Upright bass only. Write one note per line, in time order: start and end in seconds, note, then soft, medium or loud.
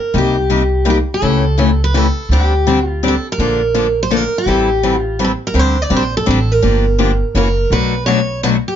0.14 1.01 C2 medium
1.22 2.09 C#2 medium
2.29 3.16 D2 medium
3.38 4.25 A#1 medium
4.46 5.33 A1 medium
5.54 5.83 D2 medium
5.90 6.21 A#1 medium
6.27 6.58 A1 medium
6.63 7.21 G1 medium
7.35 7.64 F#1 medium
7.70 8.58 B1 medium